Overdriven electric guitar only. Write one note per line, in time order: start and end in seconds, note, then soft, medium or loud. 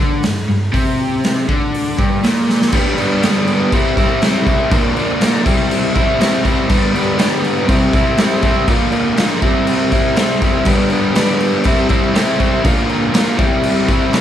0.00 0.23 D3 medium
0.24 0.44 G2 medium
0.49 0.69 G2 medium
0.73 1.47 C3 loud
1.49 1.97 D3 medium
1.98 2.22 G2 loud
2.23 2.72 A#2 loud
2.72 3.22 G2 loud
2.72 3.22 D3 loud
2.72 2.99 G3 loud
2.72 2.98 B3 loud
2.72 2.96 D4 loud
2.97 3.23 G3 medium
2.97 3.23 B3 medium
2.97 3.24 D4 medium
3.23 3.71 G2 medium
3.23 3.71 D3 medium
3.23 3.71 G3 medium
3.23 3.71 B3 loud
3.23 3.72 D4 loud
3.72 4.21 C3 loud
3.72 3.99 G3 loud
3.72 3.98 C4 loud
3.72 3.96 E4 loud
3.97 4.23 G3 medium
3.97 4.23 C4 medium
3.97 4.24 E4 medium
4.22 4.70 C3 medium
4.22 4.48 G3 medium
4.22 4.46 C4 medium
4.22 4.45 E4 medium
4.46 4.71 G3 soft
4.46 4.70 C4 medium
4.46 4.70 E4 medium
4.70 5.20 A#2 medium
4.70 5.20 D3 loud
4.70 4.98 F3 loud
4.70 4.96 A#3 loud
4.70 4.94 D4 loud
4.96 5.21 F3 medium
4.96 5.21 A#3 medium
4.96 5.22 D4 medium
5.21 5.44 A#2 medium
5.21 5.44 D3 medium
5.21 5.45 F3 medium
5.21 5.45 A#3 medium
5.21 5.44 D4 loud
5.45 6.18 C3 medium
5.45 5.96 G3 medium
5.45 5.94 C4 medium
5.45 5.94 E4 medium
5.95 6.19 G3 medium
5.95 6.20 C4 medium
5.95 6.20 E4 medium
6.19 6.67 C3 medium
6.19 6.45 G3 medium
6.19 6.44 C4 loud
6.19 6.42 E4 medium
6.43 6.68 G3 medium
6.43 6.68 C4 medium
6.43 6.67 E4 medium
6.69 7.16 G2 loud
6.69 7.17 D3 loud
6.69 6.94 G3 loud
6.69 6.93 B3 loud
6.69 6.91 D4 loud
6.92 7.18 G3 medium
6.92 7.19 B3 medium
6.92 7.18 D4 medium
7.17 7.66 G2 medium
7.17 7.67 D3 medium
7.17 7.67 G3 loud
7.17 7.67 B3 loud
7.17 7.67 D4 loud
7.67 8.17 C3 medium
7.67 7.96 G3 loud
7.67 7.94 C4 loud
7.67 7.93 E4 loud
7.94 8.17 G3 medium
7.94 8.19 C4 medium
7.94 8.19 E4 medium
8.18 8.66 C3 medium
8.18 8.43 G3 medium
8.18 8.42 C4 medium
8.18 8.41 E4 medium
8.42 8.67 G3 medium
8.42 8.67 C4 medium
8.42 8.66 E4 medium
8.67 9.15 A#2 loud
8.67 9.16 D3 loud
8.67 8.93 F3 loud
8.67 8.91 A#3 loud
8.67 8.90 F4 loud
8.92 9.17 F3 medium
8.92 9.17 A#3 medium
8.92 9.18 F4 medium
9.16 9.40 A#2 loud
9.16 9.41 D3 loud
9.16 9.41 F3 loud
9.16 9.41 A#3 medium
9.16 9.42 F4 medium
9.42 10.14 C3 medium
9.42 9.93 G3 medium
9.42 9.92 C4 medium
9.42 9.91 E4 medium
9.92 10.16 G3 medium
9.92 10.17 C4 medium
9.92 10.17 E4 medium
10.16 10.64 C3 medium
10.16 10.43 G3 medium
10.16 10.42 C4 medium
10.16 10.40 E4 medium
10.41 10.66 G3 soft
10.41 10.66 C4 medium
10.41 10.65 E4 medium
10.65 11.13 G2 loud
10.65 11.14 D3 loud
10.65 10.92 G3 loud
10.65 10.91 B3 loud
10.65 10.89 D4 loud
10.91 11.15 G3 medium
10.91 11.15 B3 medium
10.91 11.16 D4 medium
11.14 11.63 G2 medium
11.14 11.64 D3 medium
11.14 11.64 G3 loud
11.14 11.64 B3 loud
11.14 11.65 D4 loud
11.65 12.13 C3 loud
11.65 11.90 G3 loud
11.65 11.89 C4 loud
11.65 11.87 E4 loud
11.89 12.14 G3 medium
11.89 12.15 C4 medium
11.89 12.16 E4 medium
12.14 12.63 C3 medium
12.14 12.41 G3 medium
12.14 12.39 C4 medium
12.14 12.37 E4 medium
12.38 12.64 G3 medium
12.38 12.63 C4 medium
12.38 12.63 E4 medium
12.64 13.12 A#2 loud
12.64 13.13 D3 loud
12.64 12.90 F3 loud
12.64 12.88 A#3 loud
12.64 12.87 F4 loud
12.89 13.13 F3 medium
12.89 13.14 A#3 medium
12.89 13.15 F4 medium
13.13 13.37 A#2 medium
13.13 13.38 D3 medium
13.13 13.38 F3 loud
13.13 13.38 A#3 loud
13.13 13.37 F4 loud
13.37 14.10 C3 medium
13.37 13.90 G3 medium
13.37 13.89 C4 medium
13.37 13.87 E4 loud
13.89 14.12 G3 medium
13.89 14.13 C4 medium
13.89 14.14 E4 medium
14.11 14.21 C3 medium
14.11 14.21 G3 medium
14.11 14.21 C4 medium
14.11 14.21 E4 medium